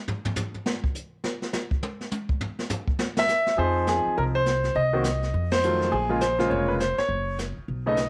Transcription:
0.08 floor tom
0.25 floor tom
0.36 floor tom, hi-hat pedal
0.54 floor tom
0.66 snare
0.84 kick
0.95 hi-hat pedal
1.24 snare
1.42 snare
1.53 snare, hi-hat pedal
1.71 kick
1.83 high tom
2.01 snare
2.11 hi-hat pedal, high tom
2.29 kick
2.41 floor tom
2.59 snare
2.69 floor tom, hi-hat pedal
2.88 kick
2.99 snare
3.17 E5, snare
3.28 snare, hi-hat pedal
3.47 snare
3.57 F2 F3 C4 D#4 G#4 C5, brush sweep
3.87 G#4, snare, hi-hat pedal
4.06 muted upright bass stroke
4.17 C2 A#4, brush sweep
4.35 C5
4.46 snare, hi-hat pedal
4.64 snare
4.75 C2 D#5, brush sweep
4.93 D#3 A#3 C4 F#4
5.04 snare, hi-hat pedal
5.23 snare
5.34 F2, brush sweep
5.51 C5, snare, ride
5.63 D#3 F#3 A3 F4, hi-hat pedal
5.81 snare
5.92 A#1 G#4, brush sweep
6.09 C#3 G#3 A#3 F4
6.21 C5, snare, hi-hat pedal
6.39 C#3 G#3 A#3 F4, snare
6.50 F1 C#5, brush sweep
6.68 B4
6.80 C5, snare, hi-hat pedal
6.98 C#5, muted upright bass stroke, snare
7.08 F#1, brush sweep
7.38 snare, hi-hat pedal
7.57 muted upright bass stroke
7.68 B1, brush sweep
7.86 C#3 A3 B3 D#4 D#5
7.97 snare, hi-hat pedal

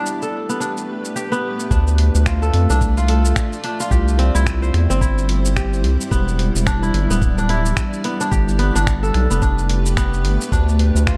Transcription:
Already playing: A3 B3 D4 E4 G4 B4
0.06 cabasa
0.22 A4, cabasa
0.49 B3, cabasa
0.60 D4, cabasa
0.77 cabasa
1.05 cabasa
1.16 G4, cabasa
1.32 B3, cabasa
1.60 cabasa
1.71 D2 A3 D4 F4 D5, kick, cabasa
1.87 cabasa
1.98 closed hi-hat
2.15 D2, cabasa
2.26 F4, finger snap, kick, cabasa
2.42 A4, cabasa
2.54 F2, closed hi-hat
2.70 C2 D4, cabasa
2.81 kick, cabasa
2.97 F4, cabasa
3.08 A4, closed hi-hat
3.25 cabasa
3.36 finger snap, kick, cabasa
3.53 cabasa
3.64 D4, closed hi-hat
3.80 F4, cabasa
3.91 C2 G3 E4 G4 C5, kick, cabasa
4.08 cabasa
4.19 C4, closed hi-hat
4.35 C2 E4, cabasa
4.46 finger snap, kick, cabasa
4.62 C5, cabasa
4.74 E2, finger snap, closed hi-hat
4.90 G1 C4, cabasa
5.01 E4, kick, cabasa
5.18 cabasa
5.29 closed hi-hat
5.45 cabasa
5.56 G4, finger snap, kick, cabasa
5.73 cabasa
5.84 C2, closed hi-hat
6.01 cabasa
6.11 E1 B3 D5, kick, cabasa
6.28 cabasa
6.39 closed hi-hat
6.55 E1, cabasa
6.66 D4, finger snap, kick, cabasa
6.83 E4, cabasa
6.94 G1, closed hi-hat
7.10 D1 B3, cabasa
7.22 kick, cabasa
7.38 D4, cabasa
7.49 E4, closed hi-hat
7.66 cabasa
7.77 finger snap, kick, cabasa
7.93 cabasa
8.04 B3, closed hi-hat
8.21 D4, cabasa
8.31 G1 A3 G4 B4, kick, cabasa
8.48 cabasa
8.59 B3, closed hi-hat
8.75 G1 D4, cabasa
8.87 finger snap, kick, cabasa
9.03 A4, cabasa
9.14 B1, finger snap, closed hi-hat
9.30 F1 B3, cabasa
9.42 D4, kick, cabasa
9.58 cabasa
9.69 closed hi-hat
9.86 cabasa
9.97 B3, finger snap, kick, cabasa
10.14 cabasa
10.24 G1, closed hi-hat
10.41 cabasa
10.52 D2 D4 F4 D5, kick, cabasa
10.69 cabasa
10.79 closed hi-hat
10.95 D2, cabasa
11.07 F4, finger snap, kick, cabasa

